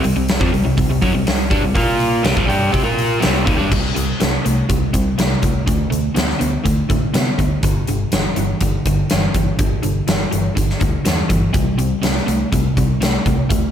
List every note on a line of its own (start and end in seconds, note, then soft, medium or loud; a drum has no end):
0.04 0.15 C2 medium
0.04 0.15 C3 medium
0.04 0.15 G3 medium
0.04 open hi-hat medium
0.16 0.39 C2 medium
0.16 0.36 C3 medium
0.16 0.36 G3 medium
0.29 snare loud
0.29 open hi-hat medium
0.41 0.52 F2 medium
0.41 0.52 F3 loud
0.41 0.52 C4 medium
0.41 kick loud
0.53 0.65 C2 medium
0.53 0.63 C3 medium
0.53 0.64 G3 medium
0.53 open hi-hat medium
0.64 0.77 C2 medium
0.64 0.77 C3 medium
0.64 0.77 G3 medium
0.78 0.89 C2 medium
0.78 0.89 C3 medium
0.78 0.90 G3 medium
0.78 kick medium
0.78 open hi-hat medium
0.90 1.01 C2 medium
0.90 1.02 C3 medium
0.90 1.03 G3 medium
1.02 1.13 F#2 medium
1.02 1.14 F#3 medium
1.02 1.14 C#4 loud
1.02 kick loud
1.02 open hi-hat medium
1.14 1.26 C2 medium
1.14 1.26 C3 medium
1.14 1.26 G3 medium
1.27 1.50 C2 medium
1.27 1.46 C3 medium
1.27 1.47 G3 medium
1.27 snare loud
1.27 open hi-hat medium
1.50 1.62 G2 medium
1.50 1.62 G3 medium
1.50 1.63 D4 loud
1.50 kick loud
1.50 open hi-hat medium
1.63 1.75 C2 medium
1.63 1.75 C3 medium
1.63 1.74 G3 medium
1.75 2.21 A#2 medium
1.75 2.23 A#3 loud
1.75 2.24 F4 loud
1.75 2.24 A#4 loud
1.75 kick loud
1.75 open hi-hat medium
2.00 open hi-hat medium
2.23 2.36 C2 medium
2.23 2.35 C3 medium
2.23 2.36 G3 medium
2.23 snare loud
2.23 open hi-hat medium
2.36 2.48 A#1 medium
2.36 2.48 A#2 medium
2.36 2.48 F3 loud
2.36 kick loud
2.48 2.72 G2 medium
2.48 2.72 G3 medium
2.48 2.72 D4 medium
2.48 2.72 G4 loud
2.48 open hi-hat medium
2.72 2.85 C3 medium
2.72 2.84 C4 medium
2.72 2.84 G4 medium
2.72 kick loud
2.72 open hi-hat medium
2.84 3.20 A#2 medium
2.84 3.21 A#3 medium
2.84 3.21 F4 medium
2.84 3.21 A#4 loud
2.99 open hi-hat medium
3.20 3.46 C2 medium
3.20 3.45 C3 medium
3.20 3.45 G3 medium
3.20 3.46 C4 loud
3.20 snare loud
3.20 open hi-hat medium
3.46 3.58 D#2 loud
3.46 3.58 D#3 medium
3.46 3.57 A#3 loud
3.46 kick loud
3.46 open hi-hat medium
3.58 3.71 G2 medium
3.58 3.70 G3 medium
3.58 3.70 D4 medium
3.71 3.87 C2 medium
3.71 3.93 C3 medium
3.71 3.94 G3 medium
3.71 kick loud
3.71 crash medium
3.95 4.12 C2 medium
3.95 4.17 C3 medium
3.95 4.18 G3 medium
3.95 closed hi-hat medium
4.20 4.37 C2 medium
4.20 4.42 C3 medium
4.20 4.42 A3 medium
4.20 snare medium
4.20 closed hi-hat medium
4.45 4.61 C2 medium
4.45 4.67 C3 medium
4.45 4.67 A3 medium
4.45 closed hi-hat medium
4.69 4.85 C2 medium
4.69 4.91 C3 medium
4.69 4.91 G3 medium
4.69 kick medium
4.69 closed hi-hat medium
4.93 5.09 C2 medium
4.93 5.16 C3 medium
4.93 5.16 G3 medium
4.93 kick medium
4.93 closed hi-hat medium
5.18 5.34 C2 medium
5.18 5.40 C3 medium
5.18 5.40 A3 medium
5.18 snare loud
5.18 closed hi-hat medium
5.42 5.58 C2 medium
5.42 5.64 C3 medium
5.42 5.65 A3 medium
5.42 kick medium
5.42 closed hi-hat medium
5.66 5.83 D2 medium
5.66 5.89 D3 medium
5.66 5.89 A3 medium
5.66 kick loud
5.66 closed hi-hat medium
5.90 6.07 D2 medium
5.90 6.13 D3 medium
5.90 6.13 A3 medium
5.90 closed hi-hat medium
6.15 6.32 D2 medium
6.15 6.37 D3 medium
6.15 6.38 B3 medium
6.15 snare medium
6.15 closed hi-hat medium
6.30 snare soft
6.39 6.56 D2 medium
6.39 6.62 D3 medium
6.39 6.62 B3 medium
6.39 closed hi-hat medium
6.64 6.81 D2 medium
6.64 6.86 D3 medium
6.64 6.87 A3 medium
6.64 kick medium
6.64 closed hi-hat medium
6.89 7.05 A2 medium
6.89 7.11 D3 medium
6.89 7.12 A3 medium
6.89 kick medium
6.89 closed hi-hat medium
7.14 7.30 C3 medium
7.14 7.36 D3 medium
7.14 7.36 B3 medium
7.14 snare loud
7.14 closed hi-hat medium
7.38 7.54 D2 medium
7.38 7.61 D3 medium
7.38 7.61 B3 medium
7.38 kick medium
7.38 closed hi-hat medium
7.63 7.79 G1 medium
7.63 7.85 G2 medium
7.63 7.86 D3 loud
7.63 kick loud
7.63 closed hi-hat medium
7.87 8.03 G1 medium
7.87 8.10 G2 medium
7.87 8.10 D3 medium
7.87 closed hi-hat medium
8.12 8.27 G1 medium
8.12 8.35 G2 medium
8.12 8.35 E3 medium
8.12 snare loud
8.12 closed hi-hat medium
8.36 8.52 G1 medium
8.36 8.59 G2 medium
8.36 8.59 E3 medium
8.36 closed hi-hat medium
8.61 8.77 G1 medium
8.61 8.83 G2 medium
8.61 8.84 D3 medium
8.61 kick medium
8.61 closed hi-hat medium
8.86 9.01 G1 medium
8.86 9.08 G2 medium
8.86 9.08 D3 medium
8.86 kick medium
8.86 closed hi-hat medium
9.10 9.26 G1 medium
9.10 9.32 G2 medium
9.10 9.33 E3 medium
9.10 snare loud
9.10 closed hi-hat medium
9.34 9.50 G1 medium
9.34 9.57 G2 medium
9.34 9.57 E3 medium
9.34 kick medium
9.34 closed hi-hat medium
9.59 9.74 G1 medium
9.59 9.81 G2 medium
9.59 9.81 D3 loud
9.59 kick loud
9.59 closed hi-hat medium
9.83 9.99 G1 medium
9.83 10.05 G2 medium
9.83 10.05 D3 medium
9.83 closed hi-hat medium
10.07 10.24 G1 medium
10.07 10.30 G2 medium
10.07 10.30 E3 medium
10.07 snare loud
10.07 closed hi-hat medium
10.31 10.48 G1 medium
10.31 10.54 G2 medium
10.31 10.54 E3 medium
10.31 closed hi-hat medium
10.55 10.72 G1 medium
10.55 10.78 G2 medium
10.55 10.79 D3 medium
10.55 kick medium
10.55 closed hi-hat medium
10.70 snare soft
10.80 10.97 D2 medium
10.80 11.03 G2 medium
10.80 11.03 D3 medium
10.80 kick medium
10.80 closed hi-hat medium
11.05 11.21 E2 medium
11.05 11.27 G2 medium
11.05 11.27 E3 medium
11.05 snare medium
11.05 closed hi-hat medium
11.29 11.45 G1 medium
11.29 11.52 G2 medium
11.29 11.52 E3 medium
11.29 kick medium
11.29 closed hi-hat medium
11.53 11.70 C2 medium
11.53 11.76 C3 medium
11.53 11.76 G3 medium
11.53 kick loud
11.53 closed hi-hat medium
11.78 11.94 C2 medium
11.78 12.01 C3 medium
11.78 12.01 G3 medium
11.78 closed hi-hat medium
12.03 12.18 C2 medium
12.03 12.25 C3 medium
12.03 12.26 A3 medium
12.03 snare loud
12.03 closed hi-hat medium
12.17 snare soft
12.27 12.43 C2 medium
12.27 12.49 C3 medium
12.27 12.50 A3 medium
12.27 closed hi-hat medium
12.52 12.68 C2 medium
12.52 12.74 C3 medium
12.52 12.75 G3 medium
12.52 kick medium
12.52 closed hi-hat medium
12.77 12.92 C2 medium
12.77 12.99 C3 medium
12.77 12.99 G3 medium
12.77 kick medium
12.77 closed hi-hat medium
13.00 13.16 C2 medium
13.00 13.23 C3 medium
13.00 13.24 A3 medium
13.00 snare loud
13.00 closed hi-hat medium
13.26 13.41 C2 medium
13.26 13.48 C3 medium
13.26 13.48 A3 medium
13.26 kick medium
13.26 closed hi-hat medium
13.50 13.66 D2 medium
13.50 13.71 D3 medium
13.50 13.71 A3 loud
13.50 kick loud
13.50 closed hi-hat medium